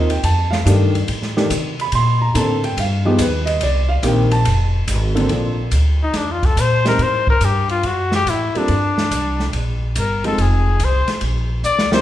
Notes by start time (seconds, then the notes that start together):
Already playing: D#2 D#5
0.10 G5, ride
0.23 F2 A5, kick, ride
0.51 F5, snare
0.65 G2 D#3 A3 D4 G4, kick, hi-hat pedal, ride
0.95 ride
1.07 A2, kick, ride
1.22 snare
1.36 D#3 A3 D4 G4, snare
1.50 C3, kick, hi-hat pedal, ride
1.79 B5, ride
1.92 A#2 C6, kick, ride
2.22 A#5
2.34 A2 D3 A#3 C4 A4 A5, kick, hi-hat pedal, ride
2.64 G5, ride
2.77 G2 F5, kick, ride
3.05 F3 B3 D#4 G4 G#4
3.18 D#2 B4, kick, hi-hat pedal, ride
3.46 D#5, ride
3.60 C2 D5, kick, ride
3.89 F5
4.02 A#1 D#3 A#3 C4 G4 G5, kick, hi-hat pedal, ride
4.31 A5, ride
4.45 F1, kick, ride
4.88 G#1, kick, hi-hat pedal, ride
5.15 D3 A#3 C4 A4, ride
5.29 A#1 F3 A#3 C4 D4 A4, kick, ride
5.71 D2, kick, hi-hat pedal, ride
6.03 D#4
6.14 F2 D4, kick, snare, ride
6.32 F4
6.43 A4, kick, ride
6.57 A#2 C5, kick, hi-hat pedal, ride
6.85 G3 A3 C4 D#4 A4 A#4, snare, ride
6.98 A2, kick, ride
7.03 C5
7.27 A#4, kick
7.40 G2, kick, hi-hat pedal, ride
7.45 G4
7.69 F4, ride
7.83 F#2 F#4, kick, ride
8.12 G4, snare
8.26 A2 E4, kick, hi-hat pedal, ride
8.55 G3 A#3 C4 D4 F4 A4, muted upright bass stroke, ride
8.68 G2, kick, ride
8.98 snare
9.11 C2, kick, hi-hat pedal, ride
9.40 snare
9.53 A#1, kick, ride
9.96 G1 A#4, kick, hi-hat pedal, ride
10.24 F3 G#3 C4 D#4 G#4 A4, ride
10.38 F1 G#4, kick, ride
10.79 C2, kick, hi-hat pedal, ride
10.84 C5
11.08 snare, ride
11.21 A#1, kick, ride
11.63 D2 D5, hi-hat pedal
11.79 snare
11.92 G3 A#3 C4 D#4 A#4 C5, snare